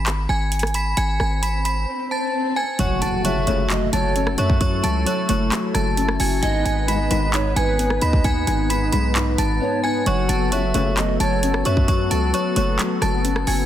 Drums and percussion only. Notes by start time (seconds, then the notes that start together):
0.06 clap, closed hi-hat
0.52 closed hi-hat
0.59 cross-stick, closed hi-hat
0.67 closed hi-hat
0.74 closed hi-hat
0.97 closed hi-hat
1.20 cross-stick
1.43 closed hi-hat
1.65 closed hi-hat
2.79 closed hi-hat
3.02 closed hi-hat
3.25 closed hi-hat
3.47 closed hi-hat
3.70 clap, closed hi-hat
3.93 closed hi-hat
4.16 closed hi-hat
4.27 cross-stick
4.38 closed hi-hat
4.50 kick
4.61 kick, closed hi-hat
4.84 closed hi-hat
5.07 closed hi-hat
5.29 closed hi-hat
5.52 clap, closed hi-hat
5.74 cross-stick, closed hi-hat
5.97 closed hi-hat
6.09 cross-stick
6.20 open hi-hat
6.43 closed hi-hat
6.66 closed hi-hat
6.88 closed hi-hat
7.11 closed hi-hat
7.34 clap, closed hi-hat
7.57 closed hi-hat
7.79 closed hi-hat
7.90 cross-stick
8.02 closed hi-hat
8.13 kick
8.24 kick, closed hi-hat
8.47 closed hi-hat
8.70 closed hi-hat
8.93 closed hi-hat
9.15 clap, closed hi-hat
9.38 closed hi-hat
10.06 closed hi-hat
10.29 closed hi-hat
10.52 closed hi-hat
10.74 closed hi-hat
10.97 clap, closed hi-hat
11.20 closed hi-hat
11.43 closed hi-hat
11.54 cross-stick
11.65 closed hi-hat
11.77 kick
11.88 kick, closed hi-hat
12.11 closed hi-hat
12.34 closed hi-hat
12.56 closed hi-hat
12.79 clap, closed hi-hat
13.02 cross-stick, closed hi-hat
13.25 closed hi-hat
13.36 cross-stick
13.47 open hi-hat